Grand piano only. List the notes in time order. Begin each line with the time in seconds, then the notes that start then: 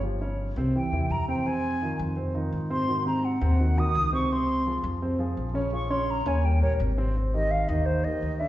0.03 F3 F4 G4
0.21 C#3 C#4 C#5
0.57 C3 C4 C5
0.76 E3 E4 G4
0.93 E3 E4 G4
1.28 C3 C4 C5
1.46 C3 C4 C5
1.82 D#3 D#4 F4
2.16 C3 C4 C5
2.35 D#3 D#4 F4
2.70 C3 C4 C5
2.88 D#3 D#4 F#4
3.06 C3 C4 C5
3.41 C3 C4 C5
3.59 D#3 D#4 F#4
3.77 D#3 D#4 F#4
4.12 C3 C4 C5
4.32 C3 C4 C5
4.67 F3 F4 G#4
5.02 C3 C4 C5
5.19 F3 F4 G#4
5.54 C#3 C#4 C#5
5.73 F3 F4 G#4
5.90 C#3 C#4 C#5
6.26 C#3 C#4 C#5
6.44 G3 G4 A#4
6.61 G3 G4 A#4
6.98 C3 C4 C5
7.16 C3 C4 C5
7.34 D#3 D#4 G4
7.70 D#3 D#4 G4
8.05 D#3 D#4 G4
8.41 D3 D4 D5